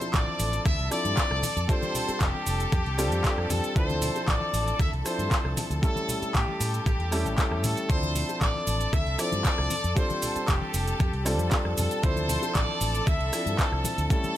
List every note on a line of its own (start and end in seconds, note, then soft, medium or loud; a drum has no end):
0.00 0.88 F3 medium
0.00 0.88 C4 medium
0.00 0.89 D4 medium
0.00 0.89 E4 medium
0.00 0.89 A4 medium
0.00 7.88 A4 medium
0.00 0.10 C5 loud
0.00 7.88 A5 medium
0.00 closed hi-hat soft
0.00 high bongo medium
0.00 shaker soft
0.13 0.23 A1 medium
0.13 0.65 D5 loud
0.13 kick loud
0.13 clap loud
0.13 closed hi-hat medium
0.13 shaker soft
0.28 high conga medium
0.40 0.58 A1 medium
0.40 open hi-hat loud
0.40 shaker medium
0.53 closed hi-hat medium
0.53 shaker soft
0.66 0.75 D2 medium
0.66 0.90 E5 loud
0.66 kick loud
0.66 cross-stick medium
0.66 closed hi-hat medium
0.66 high conga medium
0.66 shaker soft
0.79 0.88 C2 medium
0.79 closed hi-hat soft
0.91 1.41 F3 medium
0.91 1.41 C4 medium
0.91 1.41 D4 medium
0.91 1.41 E4 medium
0.91 1.42 A4 medium
0.91 1.65 D5 loud
0.91 cross-stick medium
0.91 open hi-hat medium
0.91 shaker medium
1.05 1.13 G2 medium
1.05 closed hi-hat medium
1.05 high conga medium
1.05 shaker soft
1.17 kick loud
1.17 clap loud
1.17 closed hi-hat medium
1.17 shaker soft
1.31 1.39 C2 medium
1.31 cross-stick medium
1.43 open hi-hat loud
1.43 high conga medium
1.43 low conga medium
1.43 shaker medium
1.57 1.65 F2 loud
1.57 closed hi-hat medium
1.57 shaker soft
1.68 2.95 G3 medium
1.68 2.95 C4 medium
1.68 2.95 D4 medium
1.68 2.95 F4 medium
1.68 2.96 A4 medium
1.68 2.21 C5 loud
1.68 kick loud
1.68 closed hi-hat medium
1.68 shaker soft
1.83 closed hi-hat soft
1.83 high conga medium
1.83 shaker soft
1.95 open hi-hat loud
1.95 low conga medium
1.95 shaker medium
2.08 muted fingered electric bass stroke soft
2.08 closed hi-hat soft
2.08 high bongo medium
2.08 shaker soft
2.21 2.30 F1 medium
2.21 3.50 G4 loud
2.21 kick loud
2.21 clap loud
2.21 closed hi-hat medium
2.21 shaker soft
2.34 high conga medium
2.47 2.65 F1 medium
2.47 open hi-hat loud
2.47 shaker medium
2.60 closed hi-hat soft
2.60 shaker soft
2.72 2.82 F2 medium
2.72 kick loud
2.72 cross-stick medium
2.72 closed hi-hat medium
2.72 high conga medium
2.72 shaker soft
2.86 3.12 C2 loud
2.86 closed hi-hat soft
2.98 3.21 G3 medium
2.98 3.21 C4 medium
2.98 3.21 D4 medium
2.98 3.21 F4 medium
2.98 3.21 A4 medium
2.98 cross-stick medium
2.98 open hi-hat loud
2.98 high bongo soft
2.98 shaker medium
3.12 3.20 F2 medium
3.12 closed hi-hat soft
3.12 high conga medium
3.12 shaker soft
3.23 3.73 G3 medium
3.23 3.73 C4 medium
3.23 3.73 D4 medium
3.23 3.73 F4 medium
3.23 3.73 A4 medium
3.23 kick loud
3.23 clap loud
3.23 closed hi-hat medium
3.23 shaker soft
3.38 3.46 F2 medium
3.38 cross-stick medium
3.50 3.59 F2 medium
3.50 3.76 A4 medium
3.50 open hi-hat loud
3.50 high conga medium
3.50 low conga medium
3.50 shaker medium
3.64 closed hi-hat soft
3.64 shaker soft
3.75 4.09 D2 medium
3.75 5.02 F3 medium
3.75 5.02 C4 medium
3.75 5.02 D4 medium
3.75 5.02 E4 medium
3.75 5.03 A4 medium
3.75 4.24 C5 loud
3.75 kick loud
3.75 closed hi-hat medium
3.75 shaker soft
3.90 closed hi-hat soft
3.90 high conga loud
3.90 shaker soft
4.02 open hi-hat loud
4.02 low conga medium
4.02 shaker medium
4.16 closed hi-hat soft
4.16 high bongo soft
4.16 shaker soft
4.28 4.37 A1 medium
4.28 4.80 D5 loud
4.28 kick loud
4.28 clap loud
4.28 closed hi-hat medium
4.28 shaker soft
4.41 high conga medium
4.53 4.72 A1 medium
4.53 open hi-hat loud
4.53 shaker medium
4.68 closed hi-hat soft
4.68 shaker soft
4.79 4.89 D2 medium
4.79 4.91 E5 medium
4.79 kick loud
4.79 cross-stick medium
4.79 closed hi-hat medium
4.79 high conga medium
4.79 shaker soft
4.93 5.01 C2 medium
4.93 closed hi-hat soft
5.04 5.79 F3 medium
5.04 5.79 C4 medium
5.04 5.80 D4 medium
5.04 5.80 E4 medium
5.04 5.80 A4 medium
5.04 5.53 C5 medium
5.04 cross-stick medium
5.04 open hi-hat loud
5.04 shaker medium
5.19 5.27 G2 medium
5.19 closed hi-hat soft
5.19 high conga medium
5.19 shaker soft
5.31 kick loud
5.31 clap loud
5.31 closed hi-hat medium
5.31 shaker soft
5.45 5.53 C2 medium
5.45 cross-stick medium
5.57 open hi-hat loud
5.57 high conga medium
5.57 low conga medium
5.57 shaker medium
5.70 5.79 D2 loud
5.70 closed hi-hat soft
5.70 shaker soft
5.82 7.09 G3 medium
5.82 7.09 A3 medium
5.82 7.09 C#4 medium
5.82 7.09 E4 medium
5.82 6.31 A4 loud
5.82 7.10 A4 medium
5.82 kick loud
5.82 closed hi-hat medium
5.82 shaker soft
5.96 closed hi-hat soft
5.96 high conga medium
5.96 shaker soft
6.09 open hi-hat loud
6.09 low conga medium
6.09 shaker medium
6.22 muted fingered electric bass stroke soft
6.22 closed hi-hat soft
6.22 high bongo soft
6.22 shaker soft
6.34 6.44 A2 medium
6.34 7.64 G4 medium
6.34 kick loud
6.34 clap loud
6.34 closed hi-hat medium
6.34 shaker soft
6.48 high conga medium
6.60 6.79 A2 loud
6.60 open hi-hat loud
6.60 shaker medium
6.74 closed hi-hat soft
6.74 shaker soft
6.86 6.96 A1 medium
6.86 kick loud
6.86 cross-stick medium
6.86 closed hi-hat medium
6.86 high conga medium
6.86 shaker soft
7.00 7.25 E2 medium
7.00 closed hi-hat soft
7.11 7.35 G3 medium
7.11 7.35 A3 medium
7.11 7.35 C#4 medium
7.11 7.35 E4 medium
7.11 7.35 A4 loud
7.11 cross-stick medium
7.11 open hi-hat loud
7.11 high bongo soft
7.11 shaker medium
7.25 7.34 A1 medium
7.25 closed hi-hat soft
7.25 high conga medium
7.25 shaker soft
7.37 7.86 G3 medium
7.37 7.87 A3 medium
7.37 7.87 C#4 medium
7.37 7.87 E4 medium
7.37 7.87 A4 medium
7.37 kick loud
7.37 clap loud
7.37 closed hi-hat medium
7.37 shaker soft
7.51 7.64 E2 medium
7.51 cross-stick medium
7.64 7.73 A2 medium
7.64 7.90 A4 medium
7.64 open hi-hat loud
7.64 high conga medium
7.64 low conga medium
7.64 shaker medium
7.77 closed hi-hat medium
7.77 shaker soft
7.88 8.22 D2 medium
7.88 9.15 F3 medium
7.88 9.16 C4 medium
7.88 9.16 D4 medium
7.88 9.16 E4 medium
7.88 14.37 A4 medium
7.88 9.16 A4 medium
7.88 8.37 C5 loud
7.88 14.37 A5 medium
7.88 kick loud
7.88 closed hi-hat medium
7.88 shaker soft
8.03 closed hi-hat soft
8.03 high conga medium
8.03 shaker soft
8.15 open hi-hat loud
8.15 low conga medium
8.15 shaker medium
8.29 closed hi-hat soft
8.29 high bongo soft
8.29 shaker soft
8.41 8.51 A1 medium
8.41 8.93 D5 loud
8.41 kick loud
8.41 clap loud
8.41 closed hi-hat medium
8.41 shaker soft
8.55 high conga medium
8.67 8.85 A1 loud
8.67 open hi-hat loud
8.67 shaker medium
8.81 closed hi-hat medium
8.81 shaker soft
8.93 9.02 D2 medium
8.93 9.19 E5 loud
8.93 kick loud
8.93 cross-stick medium
8.93 closed hi-hat medium
8.93 high conga medium
8.93 shaker soft
9.07 9.15 C2 medium
9.07 closed hi-hat soft
9.18 9.69 F3 medium
9.18 9.69 C4 medium
9.18 9.69 D4 medium
9.18 9.69 E4 medium
9.18 9.69 A4 medium
9.18 9.97 D5 loud
9.18 cross-stick medium
9.18 open hi-hat loud
9.18 shaker medium
9.32 9.41 G2 medium
9.32 closed hi-hat soft
9.32 high conga medium
9.32 shaker soft
9.45 kick loud
9.45 clap loud
9.45 closed hi-hat medium
9.45 shaker soft
9.58 9.67 C2 medium
9.58 cross-stick medium
9.70 open hi-hat loud
9.70 high conga medium
9.70 low conga medium
9.70 shaker medium
9.84 9.93 F2 loud
9.84 closed hi-hat medium
9.84 shaker soft
9.95 11.22 G3 medium
9.95 11.22 C4 medium
9.95 11.23 D4 medium
9.95 11.23 F4 medium
9.95 11.23 A4 medium
9.95 10.45 C5 loud
9.95 kick loud
9.95 closed hi-hat medium
9.95 shaker soft
10.10 closed hi-hat soft
10.10 high conga medium
10.10 shaker soft
10.22 open hi-hat loud
10.22 low conga medium
10.22 shaker medium
10.36 muted fingered electric bass stroke soft
10.36 closed hi-hat soft
10.36 high bongo medium
10.36 shaker soft
10.48 10.58 F1 medium
10.48 11.47 G4 medium
10.48 kick medium
10.48 clap loud
10.48 closed hi-hat medium
10.48 shaker soft
10.62 high conga medium
10.74 10.92 F1 medium
10.74 open hi-hat loud
10.74 shaker medium
10.87 closed hi-hat medium
10.87 shaker soft
10.99 11.09 F2 medium
10.99 kick loud
10.99 cross-stick medium
10.99 closed hi-hat medium
10.99 high conga medium
10.99 shaker soft
11.13 11.39 C2 loud
11.13 closed hi-hat soft
11.25 11.48 G3 medium
11.25 11.48 C4 medium
11.25 11.49 D4 medium
11.25 11.49 F4 medium
11.25 11.49 A4 loud
11.25 cross-stick medium
11.25 open hi-hat loud
11.25 high bongo soft
11.25 shaker medium
11.39 11.48 F2 medium
11.39 closed hi-hat soft
11.39 high conga medium
11.39 shaker soft
11.51 12.00 G3 medium
11.51 12.00 C4 medium
11.51 12.00 D4 medium
11.51 12.00 F4 medium
11.51 12.01 A4 loud
11.51 kick loud
11.51 clap loud
11.51 closed hi-hat medium
11.51 shaker soft
11.65 11.74 F2 medium
11.65 cross-stick medium
11.78 11.87 F2 medium
11.78 12.02 A4 medium
11.78 open hi-hat loud
11.78 high conga medium
11.78 low conga medium
11.78 shaker medium
11.91 closed hi-hat medium
11.91 shaker soft
12.02 12.36 D2 medium
12.02 13.29 F3 medium
12.02 13.29 C4 medium
12.02 13.30 D4 medium
12.02 13.30 E4 medium
12.02 13.30 A4 medium
12.02 12.55 C5 loud
12.02 kick loud
12.02 closed hi-hat medium
12.02 shaker soft
12.17 closed hi-hat soft
12.17 high conga medium
12.17 shaker soft
12.29 open hi-hat loud
12.29 low conga medium
12.29 shaker medium
12.42 closed hi-hat soft
12.42 high bongo medium
12.42 shaker soft
12.55 12.65 A1 medium
12.55 13.07 D5 loud
12.55 kick loud
12.55 clap loud
12.55 closed hi-hat medium
12.55 shaker soft
12.69 high conga medium
12.81 12.99 A1 loud
12.81 open hi-hat loud
12.81 shaker medium
12.95 closed hi-hat medium
12.95 shaker soft
13.06 13.16 D2 medium
13.06 13.58 E5 loud
13.06 kick loud
13.06 cross-stick medium
13.06 closed hi-hat medium
13.06 high conga medium
13.06 shaker soft
13.21 13.29 C2 medium
13.21 closed hi-hat soft
13.32 14.07 F3 medium
13.32 14.07 C4 medium
13.32 14.07 D4 medium
13.32 14.08 E4 medium
13.32 14.08 A4 medium
13.32 cross-stick medium
13.32 open hi-hat medium
13.32 shaker medium
13.46 13.55 G2 medium
13.46 closed hi-hat medium
13.46 high conga medium
13.46 shaker soft
13.58 14.08 A4 medium
13.58 kick loud
13.58 clap loud
13.58 closed hi-hat medium
13.58 shaker soft
13.72 13.81 C2 medium
13.72 cross-stick medium
13.84 open hi-hat loud
13.84 high conga medium
13.84 low conga medium
13.84 shaker medium
13.98 14.07 D2 medium
13.98 closed hi-hat medium
13.98 shaker soft
14.09 14.37 G3 medium
14.09 14.37 A3 medium
14.09 14.37 C#4 medium
14.09 14.37 E4 medium
14.09 14.37 A4 loud
14.09 14.37 A4 medium
14.09 kick loud
14.09 closed hi-hat medium
14.09 shaker soft
14.24 closed hi-hat soft
14.24 high conga medium
14.24 shaker soft